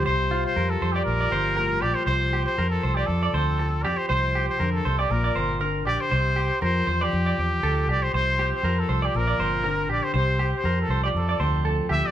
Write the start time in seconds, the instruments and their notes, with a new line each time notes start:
Already playing: steel-string acoustic guitar G3
0.05 fingered electric bass C2, steel-string acoustic guitar C3, muted trumpet C5, clean electric guitar C5
0.31 steel-string acoustic guitar C4, clean electric guitar F4
0.46 muted trumpet C5
0.56 fingered electric bass F2, steel-string acoustic guitar F3, clean electric guitar A#4
0.70 muted trumpet A4
0.82 fingered electric bass F2, clean electric guitar C5
0.92 muted trumpet G4, clean electric guitar D5
1.05 fingered electric bass A#1, steel-string acoustic guitar A#2, muted trumpet A#4
1.21 clean electric guitar D5
1.32 fingered electric bass G1, steel-string acoustic guitar C4, clean electric guitar C5
1.57 steel-string acoustic guitar A2, clean electric guitar A#4
1.82 fingered electric bass A#1, steel-string acoustic guitar A#2, clean electric guitar G4, muted trumpet D5
1.95 muted trumpet C5
2.06 fingered electric bass C2, steel-string acoustic guitar C3, muted trumpet C5, clean electric guitar C5
2.33 steel-string acoustic guitar C4, clean electric guitar G4
2.46 muted trumpet C5
2.58 fingered electric bass F2, steel-string acoustic guitar F3, clean electric guitar A#4
2.70 muted trumpet A4
2.83 fingered electric bass C2, clean electric guitar C5
2.95 muted trumpet G4, clean electric guitar D5
3.06 fingered electric bass F2, muted trumpet A4
3.10 steel-string acoustic guitar F2
3.23 clean electric guitar D5
3.33 fingered electric bass D2, steel-string acoustic guitar C4, clean electric guitar C5
3.59 steel-string acoustic guitar F3, muted clean electric guitar stroke
3.83 fingered electric bass F2, clean electric guitar G4, muted trumpet D5
3.97 muted trumpet C5
4.08 fingered electric bass C2, steel-string acoustic guitar C3, muted trumpet C5, clean electric guitar C5
4.35 steel-string acoustic guitar C4, clean electric guitar G4
4.49 muted trumpet C5
4.60 fingered electric bass F2, steel-string acoustic guitar D3, clean electric guitar A#4
4.73 muted trumpet A4
4.85 fingered electric bass C2, steel-string acoustic guitar C3, clean electric guitar C5
4.99 muted trumpet G4, clean electric guitar D5
5.10 fingered electric bass A#1, steel-string acoustic guitar A#2, muted trumpet A#4
5.24 clean electric guitar D5
5.36 fingered electric bass G1, steel-string acoustic guitar C4, clean electric guitar C5
5.60 steel-string acoustic guitar D3, clean electric guitar A#4
5.86 fingered electric bass A#1, clean electric guitar G4, muted trumpet D5
6.01 muted trumpet C5
6.10 fingered electric bass C2, steel-string acoustic guitar C3, clean electric guitar C5
6.36 steel-string acoustic guitar C4, clean electric guitar G4
6.61 fingered electric bass F2, steel-string acoustic guitar F3, clean electric guitar A#4, muted trumpet C5
6.87 fingered electric bass E2, clean electric guitar C5
7.01 muted trumpet G4, clean electric guitar D5
7.12 fingered electric bass F2, muted steel-string acoustic guitar stroke
7.26 clean electric guitar D5
7.38 fingered electric bass E2, steel-string acoustic guitar C4
7.63 fingered electric bass D2, steel-string acoustic guitar F3, clean electric guitar A4
7.88 fingered electric bass C2, clean electric guitar G4, muted trumpet D5
8.03 muted trumpet C5
8.14 fingered electric bass C2, steel-string acoustic guitar C3, clean electric guitar C5, muted trumpet C5
8.39 steel-string acoustic guitar C4, clean electric guitar G4
8.55 muted trumpet C5
8.63 fingered electric bass F2, steel-string acoustic guitar F3, clean electric guitar A#4
8.79 muted trumpet A4
8.89 fingered electric bass C2, clean electric guitar C5
9.02 muted trumpet G4, clean electric guitar D5
9.14 fingered electric bass A#1, steel-string acoustic guitar A#2, muted trumpet A#4
9.27 clean electric guitar D5
9.39 fingered electric bass G1, steel-string acoustic guitar C4, clean electric guitar C5
9.64 steel-string acoustic guitar D3, clean electric guitar A#4
9.89 fingered electric bass A#1, clean electric guitar G4, muted trumpet D5
10.04 muted trumpet C5
10.14 fingered electric bass C2, steel-string acoustic guitar C3, clean electric guitar C5, muted trumpet C5
10.39 steel-string acoustic guitar C4, clean electric guitar G4
10.56 muted trumpet C5
10.64 fingered electric bass F2, steel-string acoustic guitar F3, clean electric guitar A#4
10.81 muted trumpet A4
10.89 fingered electric bass C2, clean electric guitar C5
11.04 muted trumpet G4, clean electric guitar D5
11.15 fingered electric bass F2, steel-string acoustic guitar F2, muted trumpet A4
11.29 clean electric guitar D5
11.40 fingered electric bass D2, steel-string acoustic guitar C4, clean electric guitar C5
11.65 steel-string acoustic guitar A2, clean electric guitar A4
11.89 fingered electric bass D2, steel-string acoustic guitar A#2, clean electric guitar G4, muted trumpet E5
12.06 muted trumpet D5